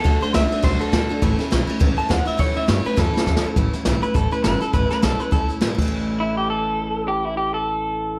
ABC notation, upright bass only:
X:1
M:4/4
L:1/8
Q:"Swing" 1/4=205
K:Amix
V:1 name="Upright bass" clef=bass
D,, z C,, z B,,, z _B,,, z | A,,, z B,,, z C,, z E,, z | A,, z G,, z F,, z E,, z | A,,, z B,,, z A,,, z G,,, z |
A,,, z B,,, z C,, z B,,, A,,,- | A,,,8- | A,,,8 |]